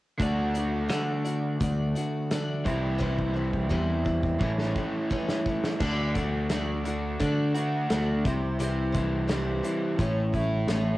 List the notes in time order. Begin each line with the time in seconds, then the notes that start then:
0.20 D2 D3 A3 D4 F#4 D5, kick, closed hi-hat
0.54 D4 F#4 D5, closed hi-hat
0.89 D3 A3 D4 F#4 D5, snare, closed hi-hat
1.25 D4 F#4 D5, closed hi-hat
1.60 D2 A3 D4 F#4 D5, kick, closed hi-hat
1.95 D4 F#4 D5, closed hi-hat
2.31 D3 A3 D4 F#4 D5, snare, closed hi-hat
2.64 C2 C3 E3 G3 C4 E4 C5, kick, closed hi-hat
2.98 C3 E3 G3 C4 E4 C5, kick
3.18 kick
3.34 G3 C4 E4 C5
3.53 kick
3.69 E2 C3 E3 G3 C4 E4 C5, kick
4.05 G3 C4 E4 C5, kick
4.23 kick
4.39 A1 A2 E3 A3 C#4 E4, kick
4.43 C#5
4.58 snare
4.76 A3 C#4 E4 C#5, kick
5.10 A2 E3 A3 C#4 E4 C#5, kick
5.29 snare
5.46 A3 C#4 E4 C#5, kick
5.64 snare
5.80 D2 D3 A3 D4 F#4 D5, kick, crash
6.15 A3 F#4 D5, kick, closed hi-hat
6.19 D4
6.50 A3 D4 F#4, snare, closed hi-hat
6.54 D5
6.84 D3 F#4 D5, closed hi-hat
6.89 D4
7.19 D3 A3 D4 F#4 D5, kick, closed hi-hat
7.54 D4 F#4 D5, closed hi-hat
7.90 D2 A3 D4 F#4 D5, snare, closed hi-hat
8.25 C2 C3 G3 C4 E4 C5, kick, closed hi-hat
8.59 C3 E3 G3 C4 E4 C5, closed hi-hat
8.92 E3 G3 C4 E4 C5, kick, closed hi-hat
9.28 G3 C4 E4 C5, snare, closed hi-hat
9.63 E3 G3 C4 E4 C5, closed hi-hat
9.99 A1 A2 E3 A3 C#4 E4 C#5, kick, closed hi-hat
10.33 A3 C#4 E4 C#5, kick, closed hi-hat
10.68 A1 A3 C#4 E4 C#5, snare, closed hi-hat